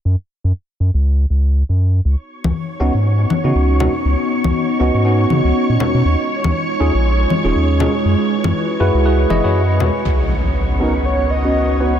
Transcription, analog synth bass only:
X:1
M:4/4
L:1/16
Q:"Swing 16ths" 1/4=120
K:C#m
V:1 name="Analog synth bass" clef=bass
F,, z2 F,, z2 F,, C,,3 C,,3 F,,3 | C,, z2 C,, z2 C,, G,,3 z C, C,,3 z | C,, z2 C,, z2 C,, G,,3 C, C,, z ^A,, z B,, | D,, z2 D,, z2 D,, ^A,,,3 z D,,, D,,3 z |
F,, z2 F,, z2 F,, C,,3 F,,, F,,3 E,, z | C,,16 |]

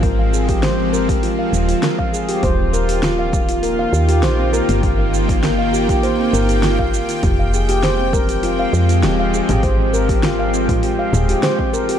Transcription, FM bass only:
X:1
M:4/4
L:1/16
Q:1/4=100
K:Fm
V:1 name="FM bass" clef=bass
A,,,8 z2 E,,, z4 z | E,,,8- E,,,2 E,,2 B,,,3 G,,,- | G,,,8 z2 G,,,4- G,,, z | F,,,8- F,,,2 F,,2 E,,,3 A,,,- |
A,,,8 z2 E,,, z4 z |]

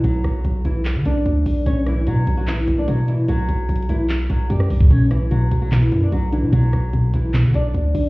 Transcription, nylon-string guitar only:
X:1
M:4/4
L:1/16
Q:1/4=148
K:Bm
V:1 name="Nylon-string guitar"
[F,F]6 [E,E]2 z2 [Dd]6 | [Cc]2 [E,E]2 [F,F]3 [F,F] [E,E]3 [Dd] [F,F]2 [E,E]2 | [F,F]6 [E,E]2 z2 [F,F]2 [G,G]4 | [Cc]2 [E,E]2 [F,F]3 [F,F] [E,E]3 [Dd] [F,F]2 [E,E]2 |
[F,F]6 [E,E]2 z2 [Dd]6 |]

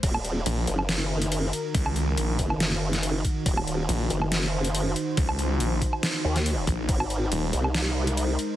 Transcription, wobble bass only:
X:1
M:4/4
L:1/8
Q:1/4=140
K:Ebdor
V:1 name="Wobble bass" clef=bass
E,,,2 z G,,,4 z | z3 G,,,4 z | E,,,2 z G,,,4 z | z4 z E,,2 z |
A,,,2 z C,,4 z |]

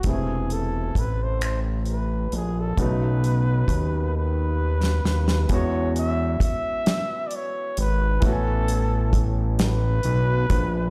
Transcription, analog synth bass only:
X:1
M:6/8
L:1/8
Q:3/8=44
K:Bmix
V:1 name="Analog synth bass" clef=bass
E,,,2 A,,,3 ^A,,, | B,,,2 D,,3 D,, | [K:E] E,,2 G,,, z2 G,,, | A,,,4 B,,, ^A,,, |]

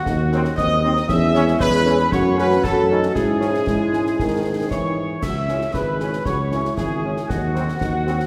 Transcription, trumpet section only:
X:1
M:2/4
L:1/8
Q:1/4=116
K:C#m
V:1 name="Trumpet section"
_G2 _e2 | e2 B2 | c B A2 | G4- |
G2 c2 | e2 B2 | c2 G2 | _G4 |]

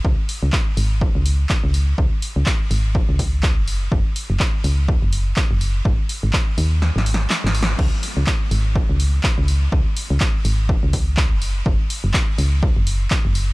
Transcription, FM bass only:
X:1
M:4/4
L:1/16
Q:"Swing 16ths" 1/4=124
K:Gb
V:1 name="FM bass" clef=bass
D,, z2 D,, z2 A,,,3 D,,3 z D,,3 | D,, z2 D,, z2 A,,,3 D,,4 G,,,3 | G,,, z2 G,,, z2 D,,3 G,,,3 z G,,,3 | A,,, z2 A,,, z2 E,,3 A,,,3 z A,,,3 |
D,, z2 D,, z2 A,,,3 D,,3 z D,,3 | D,, z2 D,, z2 A,,,3 D,,4 G,,,3 | G,,, z2 G,,, z2 D,,3 G,,,3 z G,,,3 |]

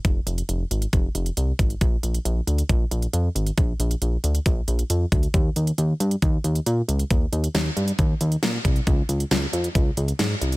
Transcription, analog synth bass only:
X:1
M:4/4
L:1/8
Q:1/4=136
K:Bbdor
V:1 name="Analog synth bass" clef=bass
F,,, F,,, F,,, A,,, F,,, F,,, C,, A,,, | B,,, B,,, B,,, =D,, B,,, B,,, F,, A,,, | B,,, B,,, B,,, =D,, B,,, B,,, F,, D,, | E,, E,, E,, G,, E,, E,, B,, D,, |
E,, E,, E,, G,, E,, E,, B,, C,, | D,, D,, D,, F,, D,, D,, A,, C,, |]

